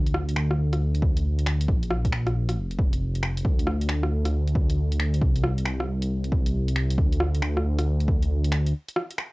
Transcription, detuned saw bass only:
Already playing: D2
0.36 D2
0.58 D2
1.68 A#1
2.12 A#1
2.35 A#1
2.57 F1
2.79 F1
3.45 D2
4.11 D2
5.22 C2
5.66 C2
5.87 C2
6.98 D2
7.42 D2
7.64 D2

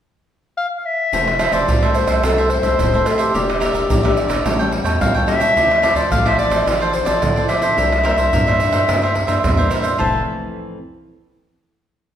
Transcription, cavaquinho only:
1.13 F4 A4 C5 E5
1.27 muted cavaquinho stroke
1.39 F4 A4 C5 E5
1.52 A4 C5 E5
1.68 F4 A4 C5 E5
1.83 A4 C5 E5
2.08 A4 C5 E5
2.23 F4 A4 C5 E5
2.38 A4 C5 E5
2.50 muted cavaquinho stroke
2.63 A4 C5 E5
2.93 A4 C5 E5
3.05 F4 A4 C5 E5
3.18 A4 C5 E5
3.34 G4 A#4 D5 E5
3.49 muted cavaquinho stroke
3.60 G4 A#4 D5 E5
3.73 A#4 D5 E5
3.89 G4 A#4 D5 E5
4.03 A#4 D5 E5
4.28 A#4 D5 E5
4.44 G4 A4 C#5 G5
4.59 A4 C#5 G5
4.72 muted cavaquinho stroke
4.84 A4 C#5 G5
5.15 A4 C#5 G5
5.27 G4 A4 C#5 G5
5.40 A4 C#5 G5
5.56 F4 A4 C5 D5
5.70 muted cavaquinho stroke
5.82 F4 A4 C5 D5
5.95 A4 C5 D5
6.11 F4 A4 C5 D5
6.25 A4 C5 D5
6.50 A4 C5 D5
6.66 F4 A4 C5 D5
6.80 A4 C5 D5
6.93 muted cavaquinho stroke
7.05 A4 C5 D5
7.36 A4 C5 D5
7.48 F4 A4 C5 D5
7.62 A4 C5 D5
7.77 E4 A#4 C5 E5
7.92 muted cavaquinho stroke
8.03 E4 A#4 C5 E5
8.17 A#4 C5 E5
8.33 E4 A#4 C5 E5
8.47 A#4 C5 E5
8.72 A#4 C5 E5
8.88 E4 A#4 C5 E5
9.02 A#4 C5 E5
9.15 muted cavaquinho stroke
9.27 A#4 C5 E5
9.57 A#4 C5 E5
9.70 E4 A#4 C5 E5
9.82 A#4 C5 E5
9.98 F4 A4 C5 E5

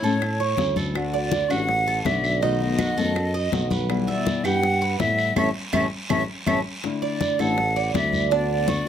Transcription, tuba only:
0.02 A2
0.58 D2
1.50 A1
2.05 B1
2.97 F#2
3.52 B1
4.44 G2
5.00 A2
5.36 A1
5.72 A1
6.10 A1
6.47 A1
7.39 A1
7.94 D2

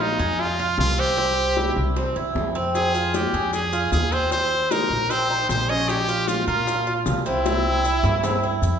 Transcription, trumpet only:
0.01 D#4
0.40 F4
0.80 F4
1.00 G4
2.76 G#4
3.16 G4
3.54 G#4
3.93 G#4
4.12 C5
4.32 C5
4.72 A#4
5.10 C5
5.50 C5
5.70 D#5
5.89 G4
6.28 F4
6.47 F4
7.27 E4

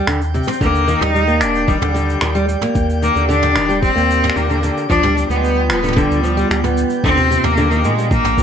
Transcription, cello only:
0.61 A#3
1.01 D#4
1.41 D4
1.68 G3
3.03 A#3
3.30 D4
3.83 C4
4.35 A#3
4.89 D4
5.29 B3
5.36 G#3
5.43 B3
5.69 B3
5.97 G3
7.04 C4
7.45 A#3
7.85 G#3
8.12 A#3

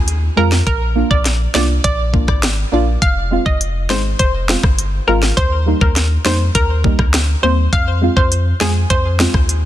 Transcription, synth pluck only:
0.37 A#4
0.67 A#4
1.11 D5
1.55 D5
1.84 D5
3.02 F5
3.46 D#5
3.90 C5
4.19 C5
5.08 A#4
5.37 C5
5.81 A#4
6.26 C5
6.55 A#4
7.43 C5
7.73 F5
8.17 C5
8.61 G#4
8.90 C5

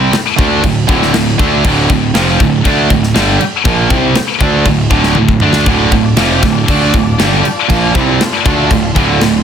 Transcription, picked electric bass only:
Already playing: C2
0.14 muted picked electric bass stroke
0.39 D2
0.64 D1
0.89 D1
1.15 D1
1.40 D2
1.65 D1
1.90 D1
2.14 F1
2.40 D1
2.66 D2
2.91 D1
3.15 G1
3.41 muted picked electric bass stroke
3.65 A#1
3.91 C2
4.17 muted picked electric bass stroke
4.41 D2
4.66 D1
4.91 D1
5.17 D1
5.42 D2
5.67 D1
5.92 D1
6.17 F1
6.43 D1
6.69 D2
6.94 D1
7.20 G1
7.45 muted picked electric bass stroke
7.70 A#1
7.96 C2
8.20 muted picked electric bass stroke
8.46 D2
8.71 D1
8.96 D1
9.23 D1

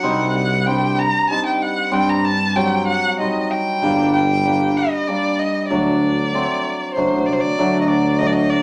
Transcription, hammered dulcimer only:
0.03 G3 C4 D#4
0.67 G3 C4 D4
1.30 G3 C4 D#4
1.91 G3 C4 D4
2.55 F#3 G3 C4
3.20 G3 C4 D#4
3.82 G3 A#3 D4
4.45 G3 A#3 D4
5.08 G3 A#3 D4
5.70 F#3 A3 D4
6.33 F#3 A3 C4
6.96 F#3 A3 D4
7.58 F#3 A3 D4
8.20 F#3 A3 D4

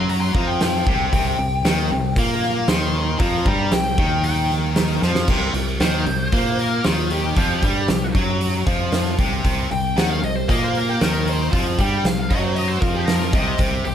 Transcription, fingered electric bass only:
Already playing: F#2
0.35 F2
0.87 C2
1.13 C2
1.39 C2
1.65 D#2
1.91 C2
2.16 A#2
2.68 D#2
3.20 F2
3.46 G2
3.72 C2
3.98 D#2
5.03 F2
5.28 C2
5.54 C2
5.80 D#2
6.06 C2
6.33 A#2
6.85 D#2
7.37 F2
7.63 G2
7.89 C2
8.15 F#2
8.67 F2
9.19 C2
9.45 C2
9.71 C2
9.98 D#2
10.23 C2
10.49 A#2
11.01 D#2
11.53 F2
11.78 G2
12.04 C2
12.31 F#2
12.82 F2
13.33 C2
13.59 C2
13.86 C2

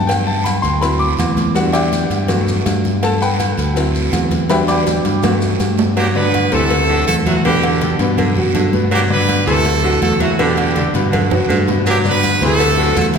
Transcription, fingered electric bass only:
Already playing: G2
0.63 D2
1.18 E2
2.10 G2
2.66 G2
3.57 D2
4.13 E2
5.05 G2
5.60 G2
6.53 D2
7.08 E2
7.99 G2
8.36 F#2
8.55 G2
9.47 D2
10.02 E2
10.94 G2
11.31 F#2
11.49 G2
12.41 D2
12.97 E2

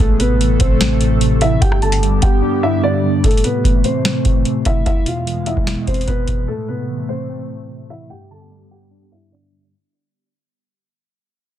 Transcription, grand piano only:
0.00 A3 A4
0.20 B3 B4
0.60 C4 C5
1.42 E4 E5
1.62 G4 G5
1.82 A4 A5
2.22 G4 G5
2.63 E4 E5
2.83 D4 D5
3.24 A3 A4
3.44 B3 B4
3.85 C4 C5
4.66 E4 E5
4.86 E4 E5
5.07 F4 F5
5.47 E4 E5
5.87 C4 C5
6.08 B3 B4
6.48 A3 A4
6.68 B3 B4
7.09 C4 C5
7.90 E4 E5
8.10 G4 G5
8.31 A4 A5
8.71 G4 G5
9.12 E4 E5
9.32 D4 D5

